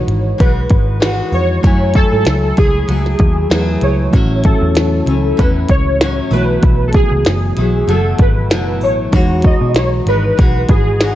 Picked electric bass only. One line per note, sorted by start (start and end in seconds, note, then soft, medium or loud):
0.08 0.33 G#1 medium
0.40 0.65 B1 medium
0.70 1.20 G#1 medium
1.32 1.58 F2 loud
1.64 2.03 F#2 loud
2.12 2.24 G#2 medium
2.26 2.51 C#2 medium
2.58 2.83 C#2 medium
2.89 3.14 C#2 medium
3.20 3.45 D#2 medium
3.51 3.76 E2 medium
3.82 4.07 C#2 medium
4.13 4.52 A1 loud
4.61 4.73 E2 medium
4.75 5.00 E2 medium
5.07 5.32 C#2 medium
5.39 5.64 E2 medium
5.69 6.20 C#2 medium
6.31 6.57 B1 medium
6.63 7.02 B1 medium
7.12 7.23 C#2 medium
7.26 7.51 F#1 medium
7.57 7.82 B1 medium
7.88 8.13 F#1 medium
8.19 8.51 G#1 medium
8.51 8.82 F#1 medium
8.82 9.07 A1 medium
9.13 9.52 E2 loud
9.61 9.73 B2 medium
9.74 10.00 B1 loud
10.06 10.31 G#1 medium
10.38 10.63 B1 medium
10.69 11.15 G#1 medium